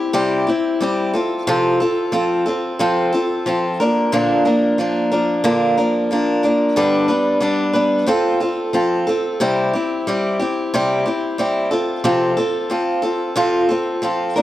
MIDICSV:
0, 0, Header, 1, 2, 480
1, 0, Start_track
1, 0, Tempo, 660793
1, 1070, Time_signature, 4, 2, 24, 8
1, 10475, End_track
2, 0, Start_track
2, 0, Title_t, "Steel-string acoustic guitar"
2, 0, Program_c, 0, 25
2, 0, Note_on_c, 0, 60, 48
2, 0, Note_on_c, 0, 64, 55
2, 0, Note_on_c, 0, 67, 61
2, 91, Note_off_c, 0, 60, 0
2, 96, Note_off_c, 0, 64, 0
2, 97, Note_off_c, 0, 67, 0
2, 97, Note_on_c, 0, 48, 84
2, 100, Note_on_c, 0, 55, 89
2, 100, Note_on_c, 0, 60, 89
2, 105, Note_on_c, 0, 64, 98
2, 105, Note_on_c, 0, 67, 104
2, 331, Note_off_c, 0, 67, 0
2, 340, Note_on_c, 0, 67, 59
2, 342, Note_off_c, 0, 48, 0
2, 343, Note_off_c, 0, 64, 0
2, 344, Note_off_c, 0, 55, 0
2, 344, Note_off_c, 0, 60, 0
2, 352, Note_on_c, 0, 64, 48
2, 358, Note_on_c, 0, 60, 50
2, 584, Note_off_c, 0, 60, 0
2, 585, Note_off_c, 0, 67, 0
2, 585, Note_on_c, 0, 55, 71
2, 589, Note_off_c, 0, 64, 0
2, 593, Note_on_c, 0, 60, 75
2, 597, Note_on_c, 0, 64, 70
2, 605, Note_on_c, 0, 67, 76
2, 822, Note_off_c, 0, 67, 0
2, 824, Note_on_c, 0, 69, 59
2, 827, Note_off_c, 0, 55, 0
2, 831, Note_off_c, 0, 60, 0
2, 831, Note_off_c, 0, 64, 0
2, 834, Note_on_c, 0, 65, 60
2, 844, Note_on_c, 0, 60, 50
2, 1063, Note_off_c, 0, 60, 0
2, 1068, Note_off_c, 0, 69, 0
2, 1068, Note_on_c, 0, 53, 89
2, 1069, Note_off_c, 0, 65, 0
2, 1069, Note_on_c, 0, 48, 85
2, 1071, Note_on_c, 0, 60, 89
2, 1077, Note_on_c, 0, 65, 87
2, 1080, Note_on_c, 0, 69, 103
2, 1300, Note_off_c, 0, 69, 0
2, 1309, Note_on_c, 0, 69, 59
2, 1310, Note_off_c, 0, 48, 0
2, 1310, Note_off_c, 0, 53, 0
2, 1311, Note_off_c, 0, 60, 0
2, 1311, Note_off_c, 0, 65, 0
2, 1319, Note_on_c, 0, 65, 60
2, 1327, Note_on_c, 0, 60, 45
2, 1537, Note_off_c, 0, 60, 0
2, 1540, Note_on_c, 0, 53, 71
2, 1541, Note_off_c, 0, 65, 0
2, 1546, Note_on_c, 0, 60, 67
2, 1548, Note_off_c, 0, 69, 0
2, 1549, Note_on_c, 0, 65, 76
2, 1556, Note_on_c, 0, 69, 76
2, 1776, Note_off_c, 0, 69, 0
2, 1785, Note_on_c, 0, 69, 53
2, 1786, Note_off_c, 0, 53, 0
2, 1786, Note_off_c, 0, 65, 0
2, 1789, Note_off_c, 0, 60, 0
2, 1795, Note_on_c, 0, 65, 49
2, 1803, Note_on_c, 0, 60, 51
2, 2027, Note_off_c, 0, 60, 0
2, 2028, Note_on_c, 0, 48, 83
2, 2029, Note_off_c, 0, 69, 0
2, 2030, Note_off_c, 0, 65, 0
2, 2034, Note_on_c, 0, 53, 87
2, 2036, Note_on_c, 0, 60, 89
2, 2039, Note_on_c, 0, 65, 94
2, 2040, Note_on_c, 0, 69, 93
2, 2262, Note_off_c, 0, 69, 0
2, 2271, Note_off_c, 0, 48, 0
2, 2271, Note_on_c, 0, 69, 62
2, 2273, Note_off_c, 0, 65, 0
2, 2274, Note_off_c, 0, 53, 0
2, 2275, Note_off_c, 0, 60, 0
2, 2281, Note_on_c, 0, 65, 55
2, 2285, Note_on_c, 0, 60, 43
2, 2511, Note_off_c, 0, 60, 0
2, 2512, Note_off_c, 0, 69, 0
2, 2513, Note_on_c, 0, 53, 71
2, 2516, Note_off_c, 0, 65, 0
2, 2520, Note_on_c, 0, 60, 75
2, 2525, Note_on_c, 0, 65, 71
2, 2532, Note_on_c, 0, 69, 71
2, 2753, Note_off_c, 0, 53, 0
2, 2757, Note_off_c, 0, 60, 0
2, 2757, Note_off_c, 0, 69, 0
2, 2759, Note_off_c, 0, 65, 0
2, 2760, Note_on_c, 0, 70, 64
2, 2767, Note_on_c, 0, 62, 57
2, 2769, Note_on_c, 0, 58, 56
2, 2778, Note_on_c, 0, 53, 48
2, 2988, Note_off_c, 0, 53, 0
2, 2993, Note_off_c, 0, 58, 0
2, 2994, Note_on_c, 0, 46, 91
2, 2995, Note_off_c, 0, 62, 0
2, 2996, Note_on_c, 0, 50, 87
2, 2997, Note_off_c, 0, 70, 0
2, 2997, Note_on_c, 0, 53, 87
2, 3002, Note_on_c, 0, 58, 93
2, 3004, Note_on_c, 0, 62, 95
2, 3006, Note_on_c, 0, 70, 91
2, 3224, Note_off_c, 0, 70, 0
2, 3228, Note_off_c, 0, 62, 0
2, 3233, Note_on_c, 0, 70, 54
2, 3234, Note_off_c, 0, 46, 0
2, 3236, Note_off_c, 0, 50, 0
2, 3236, Note_off_c, 0, 53, 0
2, 3236, Note_on_c, 0, 62, 58
2, 3238, Note_off_c, 0, 58, 0
2, 3247, Note_on_c, 0, 58, 54
2, 3251, Note_on_c, 0, 53, 46
2, 3464, Note_off_c, 0, 53, 0
2, 3471, Note_off_c, 0, 58, 0
2, 3473, Note_on_c, 0, 53, 62
2, 3474, Note_off_c, 0, 70, 0
2, 3476, Note_off_c, 0, 62, 0
2, 3480, Note_on_c, 0, 58, 67
2, 3485, Note_on_c, 0, 62, 73
2, 3491, Note_on_c, 0, 70, 78
2, 3708, Note_off_c, 0, 70, 0
2, 3712, Note_off_c, 0, 62, 0
2, 3714, Note_off_c, 0, 53, 0
2, 3716, Note_on_c, 0, 70, 62
2, 3717, Note_off_c, 0, 58, 0
2, 3721, Note_on_c, 0, 62, 55
2, 3726, Note_on_c, 0, 58, 52
2, 3731, Note_on_c, 0, 53, 50
2, 3943, Note_off_c, 0, 53, 0
2, 3946, Note_off_c, 0, 58, 0
2, 3948, Note_off_c, 0, 62, 0
2, 3950, Note_off_c, 0, 70, 0
2, 3950, Note_on_c, 0, 46, 87
2, 3950, Note_on_c, 0, 50, 86
2, 3952, Note_on_c, 0, 53, 87
2, 3955, Note_on_c, 0, 58, 92
2, 3957, Note_on_c, 0, 62, 89
2, 3959, Note_on_c, 0, 70, 89
2, 4187, Note_off_c, 0, 70, 0
2, 4191, Note_off_c, 0, 62, 0
2, 4192, Note_off_c, 0, 46, 0
2, 4193, Note_off_c, 0, 50, 0
2, 4193, Note_off_c, 0, 53, 0
2, 4195, Note_off_c, 0, 58, 0
2, 4195, Note_on_c, 0, 70, 62
2, 4200, Note_on_c, 0, 62, 59
2, 4205, Note_on_c, 0, 58, 51
2, 4213, Note_on_c, 0, 53, 50
2, 4428, Note_off_c, 0, 53, 0
2, 4434, Note_off_c, 0, 58, 0
2, 4435, Note_off_c, 0, 70, 0
2, 4436, Note_on_c, 0, 53, 65
2, 4437, Note_off_c, 0, 62, 0
2, 4443, Note_on_c, 0, 58, 65
2, 4450, Note_on_c, 0, 70, 73
2, 4451, Note_on_c, 0, 62, 71
2, 4662, Note_off_c, 0, 70, 0
2, 4670, Note_off_c, 0, 62, 0
2, 4671, Note_on_c, 0, 70, 57
2, 4676, Note_off_c, 0, 53, 0
2, 4678, Note_on_c, 0, 62, 60
2, 4679, Note_off_c, 0, 58, 0
2, 4687, Note_on_c, 0, 58, 52
2, 4690, Note_on_c, 0, 53, 50
2, 4909, Note_off_c, 0, 62, 0
2, 4911, Note_on_c, 0, 43, 92
2, 4913, Note_off_c, 0, 70, 0
2, 4914, Note_off_c, 0, 53, 0
2, 4914, Note_off_c, 0, 58, 0
2, 4915, Note_on_c, 0, 50, 78
2, 4916, Note_on_c, 0, 59, 88
2, 4917, Note_on_c, 0, 55, 84
2, 4918, Note_on_c, 0, 62, 87
2, 4921, Note_on_c, 0, 71, 96
2, 5134, Note_off_c, 0, 71, 0
2, 5141, Note_off_c, 0, 62, 0
2, 5143, Note_on_c, 0, 71, 59
2, 5147, Note_off_c, 0, 59, 0
2, 5150, Note_on_c, 0, 62, 56
2, 5152, Note_off_c, 0, 55, 0
2, 5153, Note_off_c, 0, 43, 0
2, 5155, Note_off_c, 0, 50, 0
2, 5156, Note_on_c, 0, 59, 50
2, 5160, Note_on_c, 0, 55, 49
2, 5370, Note_off_c, 0, 55, 0
2, 5376, Note_off_c, 0, 59, 0
2, 5379, Note_on_c, 0, 55, 74
2, 5381, Note_off_c, 0, 62, 0
2, 5384, Note_on_c, 0, 59, 69
2, 5387, Note_off_c, 0, 71, 0
2, 5390, Note_on_c, 0, 62, 78
2, 5395, Note_on_c, 0, 71, 73
2, 5609, Note_off_c, 0, 71, 0
2, 5616, Note_off_c, 0, 62, 0
2, 5618, Note_on_c, 0, 71, 58
2, 5622, Note_off_c, 0, 59, 0
2, 5624, Note_on_c, 0, 62, 54
2, 5627, Note_off_c, 0, 55, 0
2, 5630, Note_on_c, 0, 59, 52
2, 5636, Note_on_c, 0, 55, 45
2, 5856, Note_off_c, 0, 55, 0
2, 5858, Note_on_c, 0, 53, 83
2, 5862, Note_off_c, 0, 59, 0
2, 5865, Note_on_c, 0, 60, 91
2, 5866, Note_off_c, 0, 71, 0
2, 5867, Note_off_c, 0, 62, 0
2, 5870, Note_on_c, 0, 65, 95
2, 5874, Note_on_c, 0, 69, 95
2, 6096, Note_off_c, 0, 69, 0
2, 6101, Note_off_c, 0, 65, 0
2, 6104, Note_on_c, 0, 69, 58
2, 6106, Note_off_c, 0, 53, 0
2, 6110, Note_off_c, 0, 60, 0
2, 6110, Note_on_c, 0, 65, 53
2, 6121, Note_on_c, 0, 60, 48
2, 6340, Note_off_c, 0, 60, 0
2, 6343, Note_on_c, 0, 53, 72
2, 6344, Note_off_c, 0, 65, 0
2, 6349, Note_off_c, 0, 69, 0
2, 6349, Note_on_c, 0, 60, 78
2, 6353, Note_on_c, 0, 65, 74
2, 6358, Note_on_c, 0, 69, 78
2, 6578, Note_off_c, 0, 69, 0
2, 6587, Note_on_c, 0, 69, 62
2, 6588, Note_off_c, 0, 53, 0
2, 6591, Note_off_c, 0, 60, 0
2, 6593, Note_off_c, 0, 65, 0
2, 6601, Note_on_c, 0, 65, 59
2, 6605, Note_on_c, 0, 60, 53
2, 6824, Note_off_c, 0, 60, 0
2, 6829, Note_on_c, 0, 48, 77
2, 6830, Note_off_c, 0, 69, 0
2, 6832, Note_on_c, 0, 60, 94
2, 6834, Note_on_c, 0, 55, 80
2, 6836, Note_off_c, 0, 65, 0
2, 6838, Note_on_c, 0, 67, 98
2, 6839, Note_on_c, 0, 64, 96
2, 7062, Note_off_c, 0, 67, 0
2, 7071, Note_off_c, 0, 48, 0
2, 7071, Note_on_c, 0, 67, 58
2, 7073, Note_off_c, 0, 60, 0
2, 7074, Note_off_c, 0, 55, 0
2, 7076, Note_off_c, 0, 64, 0
2, 7084, Note_on_c, 0, 64, 52
2, 7088, Note_on_c, 0, 60, 51
2, 7312, Note_off_c, 0, 67, 0
2, 7313, Note_off_c, 0, 60, 0
2, 7315, Note_on_c, 0, 55, 71
2, 7318, Note_off_c, 0, 64, 0
2, 7322, Note_on_c, 0, 60, 72
2, 7327, Note_on_c, 0, 64, 75
2, 7330, Note_on_c, 0, 67, 76
2, 7542, Note_off_c, 0, 67, 0
2, 7550, Note_off_c, 0, 64, 0
2, 7551, Note_on_c, 0, 67, 57
2, 7554, Note_off_c, 0, 55, 0
2, 7557, Note_off_c, 0, 60, 0
2, 7559, Note_on_c, 0, 64, 53
2, 7568, Note_on_c, 0, 60, 45
2, 7791, Note_off_c, 0, 67, 0
2, 7793, Note_off_c, 0, 60, 0
2, 7795, Note_off_c, 0, 64, 0
2, 7799, Note_on_c, 0, 48, 95
2, 7802, Note_on_c, 0, 60, 86
2, 7803, Note_on_c, 0, 55, 99
2, 7805, Note_on_c, 0, 64, 93
2, 7811, Note_on_c, 0, 67, 97
2, 8022, Note_off_c, 0, 67, 0
2, 8031, Note_on_c, 0, 67, 62
2, 8032, Note_off_c, 0, 64, 0
2, 8035, Note_off_c, 0, 48, 0
2, 8037, Note_off_c, 0, 55, 0
2, 8037, Note_off_c, 0, 60, 0
2, 8041, Note_on_c, 0, 64, 51
2, 8047, Note_on_c, 0, 60, 52
2, 8266, Note_off_c, 0, 60, 0
2, 8268, Note_on_c, 0, 55, 70
2, 8271, Note_off_c, 0, 67, 0
2, 8272, Note_off_c, 0, 64, 0
2, 8275, Note_on_c, 0, 60, 76
2, 8281, Note_on_c, 0, 64, 80
2, 8285, Note_on_c, 0, 67, 73
2, 8503, Note_off_c, 0, 67, 0
2, 8505, Note_on_c, 0, 69, 62
2, 8509, Note_off_c, 0, 55, 0
2, 8510, Note_off_c, 0, 64, 0
2, 8513, Note_off_c, 0, 60, 0
2, 8513, Note_on_c, 0, 65, 54
2, 8523, Note_on_c, 0, 60, 57
2, 8743, Note_off_c, 0, 60, 0
2, 8744, Note_off_c, 0, 65, 0
2, 8746, Note_on_c, 0, 48, 89
2, 8746, Note_on_c, 0, 53, 87
2, 8748, Note_off_c, 0, 69, 0
2, 8751, Note_on_c, 0, 60, 96
2, 8753, Note_on_c, 0, 65, 89
2, 8755, Note_on_c, 0, 69, 98
2, 8976, Note_off_c, 0, 69, 0
2, 8984, Note_on_c, 0, 69, 66
2, 8985, Note_off_c, 0, 65, 0
2, 8987, Note_off_c, 0, 48, 0
2, 8988, Note_off_c, 0, 53, 0
2, 8990, Note_off_c, 0, 60, 0
2, 8994, Note_on_c, 0, 65, 59
2, 9004, Note_on_c, 0, 60, 52
2, 9221, Note_off_c, 0, 60, 0
2, 9223, Note_on_c, 0, 53, 65
2, 9224, Note_off_c, 0, 65, 0
2, 9227, Note_off_c, 0, 69, 0
2, 9230, Note_on_c, 0, 60, 67
2, 9232, Note_on_c, 0, 65, 71
2, 9239, Note_on_c, 0, 69, 71
2, 9450, Note_off_c, 0, 69, 0
2, 9458, Note_off_c, 0, 65, 0
2, 9459, Note_on_c, 0, 69, 63
2, 9465, Note_off_c, 0, 53, 0
2, 9466, Note_off_c, 0, 60, 0
2, 9466, Note_on_c, 0, 65, 58
2, 9474, Note_on_c, 0, 60, 47
2, 9699, Note_off_c, 0, 60, 0
2, 9702, Note_on_c, 0, 48, 91
2, 9703, Note_off_c, 0, 65, 0
2, 9703, Note_off_c, 0, 69, 0
2, 9706, Note_on_c, 0, 53, 86
2, 9708, Note_on_c, 0, 60, 94
2, 9711, Note_on_c, 0, 65, 101
2, 9713, Note_on_c, 0, 69, 87
2, 9934, Note_off_c, 0, 69, 0
2, 9943, Note_on_c, 0, 69, 60
2, 9944, Note_off_c, 0, 48, 0
2, 9946, Note_off_c, 0, 65, 0
2, 9947, Note_off_c, 0, 53, 0
2, 9948, Note_off_c, 0, 60, 0
2, 9955, Note_on_c, 0, 65, 50
2, 9961, Note_on_c, 0, 60, 51
2, 10181, Note_off_c, 0, 60, 0
2, 10183, Note_on_c, 0, 53, 69
2, 10185, Note_off_c, 0, 69, 0
2, 10186, Note_off_c, 0, 65, 0
2, 10190, Note_on_c, 0, 60, 72
2, 10195, Note_on_c, 0, 65, 70
2, 10203, Note_on_c, 0, 69, 82
2, 10425, Note_off_c, 0, 53, 0
2, 10427, Note_off_c, 0, 69, 0
2, 10428, Note_off_c, 0, 60, 0
2, 10429, Note_on_c, 0, 70, 57
2, 10431, Note_off_c, 0, 65, 0
2, 10438, Note_on_c, 0, 62, 64
2, 10443, Note_on_c, 0, 58, 54
2, 10447, Note_on_c, 0, 53, 49
2, 10475, Note_off_c, 0, 53, 0
2, 10475, Note_off_c, 0, 58, 0
2, 10475, Note_off_c, 0, 62, 0
2, 10475, Note_off_c, 0, 70, 0
2, 10475, End_track
0, 0, End_of_file